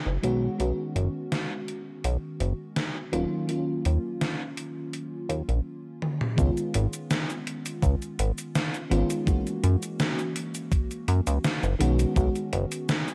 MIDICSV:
0, 0, Header, 1, 4, 480
1, 0, Start_track
1, 0, Tempo, 722892
1, 398, Time_signature, 4, 2, 24, 8
1, 8728, End_track
2, 0, Start_track
2, 0, Title_t, "FM electric piano"
2, 0, Program_c, 0, 5
2, 0, Control_c, 0, 64, 127
2, 0, Note_on_c, 0, 52, 67
2, 0, Note_on_c, 0, 56, 63
2, 0, Note_on_c, 0, 58, 63
2, 0, Note_on_c, 0, 61, 64
2, 0, Note_on_c, 0, 66, 78
2, 125, Note_off_c, 0, 52, 0
2, 127, Note_off_c, 0, 56, 0
2, 131, Note_off_c, 0, 58, 0
2, 133, Note_off_c, 0, 61, 0
2, 135, Note_off_c, 0, 66, 0
2, 150, Note_on_c, 0, 51, 90
2, 151, Note_on_c, 0, 56, 83
2, 154, Note_on_c, 0, 59, 83
2, 158, Note_on_c, 0, 61, 81
2, 158, Note_on_c, 0, 66, 103
2, 165, Control_c, 0, 64, 0
2, 292, Control_c, 0, 64, 127
2, 367, Note_off_c, 0, 51, 0
2, 367, Note_off_c, 0, 56, 0
2, 369, Note_off_c, 0, 59, 0
2, 371, Note_off_c, 0, 61, 0
2, 371, Note_off_c, 0, 66, 0
2, 386, Note_on_c, 0, 51, 70
2, 390, Note_on_c, 0, 56, 62
2, 395, Note_on_c, 0, 59, 62
2, 400, Note_on_c, 0, 61, 64
2, 404, Note_on_c, 0, 66, 78
2, 2045, Note_off_c, 0, 51, 0
2, 2047, Note_off_c, 0, 56, 0
2, 2049, Note_off_c, 0, 59, 0
2, 2052, Note_off_c, 0, 61, 0
2, 2054, Note_off_c, 0, 66, 0
2, 2070, Note_on_c, 0, 51, 94
2, 2072, Note_on_c, 0, 54, 80
2, 2075, Note_on_c, 0, 58, 81
2, 2078, Note_on_c, 0, 61, 83
2, 2081, Note_on_c, 0, 65, 101
2, 2086, Control_c, 0, 64, 0
2, 2190, Control_c, 0, 64, 127
2, 2287, Note_off_c, 0, 51, 0
2, 2287, Note_off_c, 0, 54, 0
2, 2289, Note_off_c, 0, 58, 0
2, 2291, Note_off_c, 0, 61, 0
2, 2292, Note_off_c, 0, 65, 0
2, 2304, Note_on_c, 0, 51, 70
2, 2310, Note_on_c, 0, 54, 64
2, 2315, Note_on_c, 0, 58, 65
2, 2321, Note_on_c, 0, 61, 67
2, 2324, Note_on_c, 0, 65, 76
2, 3751, Note_off_c, 0, 51, 0
2, 3754, Note_off_c, 0, 54, 0
2, 3757, Note_off_c, 0, 58, 0
2, 3759, Note_off_c, 0, 61, 0
2, 3761, Note_off_c, 0, 65, 0
2, 4221, Note_on_c, 0, 51, 74
2, 4228, Note_on_c, 0, 56, 69
2, 4231, Note_on_c, 0, 59, 71
2, 4237, Note_on_c, 0, 61, 69
2, 4242, Note_on_c, 0, 65, 82
2, 4247, Control_c, 0, 64, 0
2, 4353, Control_c, 0, 64, 127
2, 5882, Note_off_c, 0, 51, 0
2, 5885, Note_off_c, 0, 56, 0
2, 5887, Note_off_c, 0, 59, 0
2, 5890, Note_off_c, 0, 61, 0
2, 5893, Note_off_c, 0, 65, 0
2, 5910, Note_on_c, 0, 51, 95
2, 5913, Note_on_c, 0, 56, 89
2, 5918, Note_on_c, 0, 59, 85
2, 5918, Note_on_c, 0, 61, 89
2, 5922, Note_on_c, 0, 65, 107
2, 6127, Note_off_c, 0, 51, 0
2, 6128, Note_off_c, 0, 56, 0
2, 6130, Note_off_c, 0, 59, 0
2, 6131, Note_off_c, 0, 61, 0
2, 6133, Note_off_c, 0, 65, 0
2, 6144, Note_on_c, 0, 52, 75
2, 6151, Note_on_c, 0, 56, 68
2, 6154, Note_on_c, 0, 58, 69
2, 6160, Note_on_c, 0, 61, 67
2, 6164, Note_on_c, 0, 66, 80
2, 6168, Control_c, 0, 64, 0
2, 6275, Control_c, 0, 64, 127
2, 7803, Note_off_c, 0, 52, 0
2, 7807, Note_off_c, 0, 56, 0
2, 7809, Note_off_c, 0, 58, 0
2, 7811, Note_off_c, 0, 61, 0
2, 7813, Note_off_c, 0, 66, 0
2, 7828, Note_on_c, 0, 51, 99
2, 7832, Note_on_c, 0, 56, 93
2, 7834, Note_on_c, 0, 59, 92
2, 7837, Note_on_c, 0, 61, 92
2, 7841, Note_on_c, 0, 66, 106
2, 7846, Control_c, 0, 64, 0
2, 7950, Control_c, 0, 64, 127
2, 8046, Note_off_c, 0, 51, 0
2, 8047, Note_off_c, 0, 56, 0
2, 8048, Note_off_c, 0, 59, 0
2, 8050, Note_off_c, 0, 61, 0
2, 8052, Note_off_c, 0, 66, 0
2, 8062, Note_on_c, 0, 51, 74
2, 8067, Note_on_c, 0, 56, 67
2, 8072, Note_on_c, 0, 59, 66
2, 8079, Note_on_c, 0, 61, 72
2, 8083, Note_on_c, 0, 66, 83
2, 8728, Note_off_c, 0, 51, 0
2, 8728, Note_off_c, 0, 56, 0
2, 8728, Note_off_c, 0, 59, 0
2, 8728, Note_off_c, 0, 61, 0
2, 8728, Note_off_c, 0, 66, 0
2, 8728, End_track
3, 0, Start_track
3, 0, Title_t, "Analog synth bass"
3, 0, Program_c, 1, 38
3, 42, Note_on_c, 1, 30, 94
3, 120, Note_off_c, 1, 30, 0
3, 158, Note_on_c, 1, 35, 82
3, 323, Note_off_c, 1, 35, 0
3, 395, Note_on_c, 1, 35, 93
3, 481, Note_off_c, 1, 35, 0
3, 635, Note_on_c, 1, 30, 96
3, 721, Note_off_c, 1, 30, 0
3, 1356, Note_on_c, 1, 35, 92
3, 1441, Note_off_c, 1, 35, 0
3, 1596, Note_on_c, 1, 30, 101
3, 1681, Note_off_c, 1, 30, 0
3, 2077, Note_on_c, 1, 27, 92
3, 2162, Note_off_c, 1, 27, 0
3, 2559, Note_on_c, 1, 39, 96
3, 2643, Note_off_c, 1, 39, 0
3, 3514, Note_on_c, 1, 39, 97
3, 3601, Note_off_c, 1, 39, 0
3, 3643, Note_on_c, 1, 34, 101
3, 3720, Note_off_c, 1, 34, 0
3, 4235, Note_on_c, 1, 37, 95
3, 4321, Note_off_c, 1, 37, 0
3, 4479, Note_on_c, 1, 32, 100
3, 4563, Note_off_c, 1, 32, 0
3, 5196, Note_on_c, 1, 37, 96
3, 5282, Note_off_c, 1, 37, 0
3, 5437, Note_on_c, 1, 32, 105
3, 5522, Note_off_c, 1, 32, 0
3, 5918, Note_on_c, 1, 32, 95
3, 6002, Note_off_c, 1, 32, 0
3, 6398, Note_on_c, 1, 42, 100
3, 6482, Note_off_c, 1, 42, 0
3, 7356, Note_on_c, 1, 42, 99
3, 7442, Note_off_c, 1, 42, 0
3, 7482, Note_on_c, 1, 37, 100
3, 7560, Note_off_c, 1, 37, 0
3, 7724, Note_on_c, 1, 30, 99
3, 7801, Note_off_c, 1, 30, 0
3, 7839, Note_on_c, 1, 35, 85
3, 8003, Note_off_c, 1, 35, 0
3, 8077, Note_on_c, 1, 35, 99
3, 8162, Note_off_c, 1, 35, 0
3, 8319, Note_on_c, 1, 30, 105
3, 8403, Note_off_c, 1, 30, 0
3, 8728, End_track
4, 0, Start_track
4, 0, Title_t, "Drums"
4, 156, Note_on_c, 9, 42, 61
4, 223, Note_off_c, 9, 42, 0
4, 397, Note_on_c, 9, 42, 71
4, 464, Note_off_c, 9, 42, 0
4, 637, Note_on_c, 9, 42, 59
4, 704, Note_off_c, 9, 42, 0
4, 876, Note_on_c, 9, 38, 104
4, 876, Note_on_c, 9, 42, 72
4, 943, Note_off_c, 9, 38, 0
4, 943, Note_off_c, 9, 42, 0
4, 1117, Note_on_c, 9, 42, 61
4, 1183, Note_off_c, 9, 42, 0
4, 1356, Note_on_c, 9, 42, 72
4, 1423, Note_off_c, 9, 42, 0
4, 1596, Note_on_c, 9, 42, 62
4, 1662, Note_off_c, 9, 42, 0
4, 1835, Note_on_c, 9, 38, 111
4, 1835, Note_on_c, 9, 42, 76
4, 1901, Note_off_c, 9, 38, 0
4, 1901, Note_off_c, 9, 42, 0
4, 2078, Note_on_c, 9, 42, 61
4, 2144, Note_off_c, 9, 42, 0
4, 2316, Note_on_c, 9, 42, 74
4, 2382, Note_off_c, 9, 42, 0
4, 2558, Note_on_c, 9, 42, 63
4, 2624, Note_off_c, 9, 42, 0
4, 2798, Note_on_c, 9, 38, 108
4, 2798, Note_on_c, 9, 42, 77
4, 2864, Note_off_c, 9, 38, 0
4, 2864, Note_off_c, 9, 42, 0
4, 3037, Note_on_c, 9, 42, 66
4, 3103, Note_off_c, 9, 42, 0
4, 3276, Note_on_c, 9, 42, 73
4, 3343, Note_off_c, 9, 42, 0
4, 3517, Note_on_c, 9, 42, 59
4, 3583, Note_off_c, 9, 42, 0
4, 3644, Note_on_c, 9, 42, 35
4, 3710, Note_off_c, 9, 42, 0
4, 3999, Note_on_c, 9, 48, 59
4, 4065, Note_off_c, 9, 48, 0
4, 4124, Note_on_c, 9, 47, 67
4, 4190, Note_off_c, 9, 47, 0
4, 4236, Note_on_c, 9, 36, 122
4, 4240, Note_on_c, 9, 42, 56
4, 4240, Note_on_c, 9, 69, 49
4, 4302, Note_off_c, 9, 36, 0
4, 4307, Note_off_c, 9, 42, 0
4, 4307, Note_off_c, 9, 69, 0
4, 4364, Note_on_c, 9, 42, 27
4, 4364, Note_on_c, 9, 69, 29
4, 4430, Note_off_c, 9, 42, 0
4, 4430, Note_off_c, 9, 69, 0
4, 4477, Note_on_c, 9, 42, 94
4, 4543, Note_off_c, 9, 42, 0
4, 4603, Note_on_c, 9, 42, 55
4, 4603, Note_on_c, 9, 69, 59
4, 4670, Note_off_c, 9, 42, 0
4, 4670, Note_off_c, 9, 69, 0
4, 4719, Note_on_c, 9, 38, 117
4, 4719, Note_on_c, 9, 42, 54
4, 4719, Note_on_c, 9, 69, 50
4, 4786, Note_off_c, 9, 38, 0
4, 4786, Note_off_c, 9, 42, 0
4, 4786, Note_off_c, 9, 69, 0
4, 4846, Note_on_c, 9, 42, 29
4, 4846, Note_on_c, 9, 69, 30
4, 4912, Note_off_c, 9, 42, 0
4, 4912, Note_off_c, 9, 69, 0
4, 4960, Note_on_c, 9, 42, 100
4, 5027, Note_off_c, 9, 42, 0
4, 5085, Note_on_c, 9, 42, 56
4, 5085, Note_on_c, 9, 69, 57
4, 5151, Note_off_c, 9, 42, 0
4, 5151, Note_off_c, 9, 69, 0
4, 5196, Note_on_c, 9, 36, 123
4, 5201, Note_on_c, 9, 42, 57
4, 5201, Note_on_c, 9, 69, 48
4, 5262, Note_off_c, 9, 36, 0
4, 5268, Note_off_c, 9, 42, 0
4, 5268, Note_off_c, 9, 69, 0
4, 5327, Note_on_c, 9, 42, 27
4, 5327, Note_on_c, 9, 69, 29
4, 5393, Note_off_c, 9, 42, 0
4, 5393, Note_off_c, 9, 69, 0
4, 5440, Note_on_c, 9, 42, 97
4, 5506, Note_off_c, 9, 42, 0
4, 5565, Note_on_c, 9, 42, 57
4, 5565, Note_on_c, 9, 69, 61
4, 5632, Note_off_c, 9, 42, 0
4, 5632, Note_off_c, 9, 69, 0
4, 5681, Note_on_c, 9, 38, 121
4, 5681, Note_on_c, 9, 42, 55
4, 5681, Note_on_c, 9, 69, 51
4, 5747, Note_off_c, 9, 38, 0
4, 5747, Note_off_c, 9, 42, 0
4, 5747, Note_off_c, 9, 69, 0
4, 5805, Note_on_c, 9, 42, 27
4, 5805, Note_on_c, 9, 69, 30
4, 5871, Note_off_c, 9, 42, 0
4, 5871, Note_off_c, 9, 69, 0
4, 5919, Note_on_c, 9, 42, 96
4, 5986, Note_off_c, 9, 42, 0
4, 6043, Note_on_c, 9, 42, 57
4, 6043, Note_on_c, 9, 69, 61
4, 6110, Note_off_c, 9, 42, 0
4, 6110, Note_off_c, 9, 69, 0
4, 6156, Note_on_c, 9, 36, 127
4, 6160, Note_on_c, 9, 42, 54
4, 6160, Note_on_c, 9, 69, 45
4, 6223, Note_off_c, 9, 36, 0
4, 6227, Note_off_c, 9, 42, 0
4, 6227, Note_off_c, 9, 69, 0
4, 6287, Note_on_c, 9, 42, 27
4, 6287, Note_on_c, 9, 69, 28
4, 6353, Note_off_c, 9, 42, 0
4, 6353, Note_off_c, 9, 69, 0
4, 6398, Note_on_c, 9, 42, 99
4, 6465, Note_off_c, 9, 42, 0
4, 6524, Note_on_c, 9, 42, 57
4, 6524, Note_on_c, 9, 69, 57
4, 6591, Note_off_c, 9, 42, 0
4, 6591, Note_off_c, 9, 69, 0
4, 6639, Note_on_c, 9, 38, 126
4, 6639, Note_on_c, 9, 42, 55
4, 6639, Note_on_c, 9, 69, 47
4, 6705, Note_off_c, 9, 38, 0
4, 6705, Note_off_c, 9, 42, 0
4, 6705, Note_off_c, 9, 69, 0
4, 6765, Note_on_c, 9, 42, 29
4, 6765, Note_on_c, 9, 69, 29
4, 6831, Note_off_c, 9, 42, 0
4, 6831, Note_off_c, 9, 69, 0
4, 6877, Note_on_c, 9, 42, 94
4, 6944, Note_off_c, 9, 42, 0
4, 7003, Note_on_c, 9, 42, 57
4, 7003, Note_on_c, 9, 69, 56
4, 7069, Note_off_c, 9, 42, 0
4, 7069, Note_off_c, 9, 69, 0
4, 7116, Note_on_c, 9, 36, 127
4, 7118, Note_on_c, 9, 42, 57
4, 7118, Note_on_c, 9, 69, 48
4, 7182, Note_off_c, 9, 36, 0
4, 7185, Note_off_c, 9, 42, 0
4, 7185, Note_off_c, 9, 69, 0
4, 7244, Note_on_c, 9, 42, 27
4, 7244, Note_on_c, 9, 69, 29
4, 7310, Note_off_c, 9, 42, 0
4, 7310, Note_off_c, 9, 69, 0
4, 7358, Note_on_c, 9, 42, 100
4, 7424, Note_off_c, 9, 42, 0
4, 7483, Note_on_c, 9, 42, 55
4, 7483, Note_on_c, 9, 69, 57
4, 7549, Note_off_c, 9, 42, 0
4, 7549, Note_off_c, 9, 69, 0
4, 7599, Note_on_c, 9, 38, 126
4, 7599, Note_on_c, 9, 42, 57
4, 7599, Note_on_c, 9, 69, 48
4, 7665, Note_off_c, 9, 38, 0
4, 7665, Note_off_c, 9, 42, 0
4, 7665, Note_off_c, 9, 69, 0
4, 7724, Note_on_c, 9, 42, 28
4, 7724, Note_on_c, 9, 69, 28
4, 7790, Note_off_c, 9, 42, 0
4, 7790, Note_off_c, 9, 69, 0
4, 7839, Note_on_c, 9, 42, 100
4, 7905, Note_off_c, 9, 42, 0
4, 7963, Note_on_c, 9, 42, 56
4, 7963, Note_on_c, 9, 69, 55
4, 8029, Note_off_c, 9, 42, 0
4, 8029, Note_off_c, 9, 69, 0
4, 8076, Note_on_c, 9, 36, 125
4, 8079, Note_on_c, 9, 42, 54
4, 8079, Note_on_c, 9, 69, 47
4, 8142, Note_off_c, 9, 36, 0
4, 8145, Note_off_c, 9, 42, 0
4, 8145, Note_off_c, 9, 69, 0
4, 8203, Note_on_c, 9, 42, 28
4, 8203, Note_on_c, 9, 69, 28
4, 8270, Note_off_c, 9, 42, 0
4, 8270, Note_off_c, 9, 69, 0
4, 8318, Note_on_c, 9, 42, 94
4, 8384, Note_off_c, 9, 42, 0
4, 8444, Note_on_c, 9, 42, 56
4, 8444, Note_on_c, 9, 69, 57
4, 8510, Note_off_c, 9, 42, 0
4, 8510, Note_off_c, 9, 69, 0
4, 8559, Note_on_c, 9, 38, 127
4, 8559, Note_on_c, 9, 42, 55
4, 8559, Note_on_c, 9, 69, 44
4, 8625, Note_off_c, 9, 38, 0
4, 8625, Note_off_c, 9, 42, 0
4, 8625, Note_off_c, 9, 69, 0
4, 8685, Note_on_c, 9, 42, 29
4, 8685, Note_on_c, 9, 69, 28
4, 8728, Note_off_c, 9, 42, 0
4, 8728, Note_off_c, 9, 69, 0
4, 8728, End_track
0, 0, End_of_file